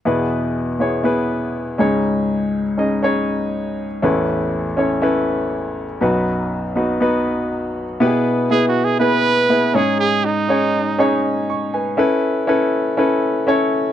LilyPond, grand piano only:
<<
  \new Staff \with { instrumentName = "Grand piano" } { \time 4/4 \key e \major \tempo 4 = 121 <b e' gis' b'>4~ <b e' gis' b'>16 r16 <b e' gis' cis''>8 <b e' gis' b'>4. <cis' dis' gis' cis''>8~ | <cis' dis' gis' cis''>4 r8 <cis' dis' gis' dis''>8 <cis' dis' gis' cis''>4. r8 | <cis' e' a' b'>4~ <cis' e' a' b'>16 r16 <cis' e' a' cis''>8 <cis' e' a' b'>4. r8 | <b dis' fis' b'>4~ <b dis' fis' b'>16 r16 <b dis' fis' b'>8 <b dis' fis' b'>4. r8 |
<b e' g' gis' b'>4 <b e' gis' b'>4 <b e' gis' b'>4 <b e' gis' b'>8 <cis' dis' gis' cis''>8~ | <cis' dis' gis' cis''>8. r16 <cis' dis' gis' cis''>4 <cis' dis' gis' cis''>4 r4 | <cis' e' a' b'>4 <cis' e' a' b'>4 <cis' e' a' b'>4 <cis' e' a' cis''>4 | }
  \new Staff \with { instrumentName = "Grand piano" } { \clef bass \time 4/4 \key e \major <e, b,>2.~ <e, b,>8 <cis, gis,>8~ | <cis, gis,>2.~ <cis, gis,>8 r8 | <a,, e,>1 | <b,, fis,>1 |
b,4. r2 gis,8~ | gis,4 r2 cis'''8 <b' gis''>8~ | <b' gis''>8 r2. r8 | }
>>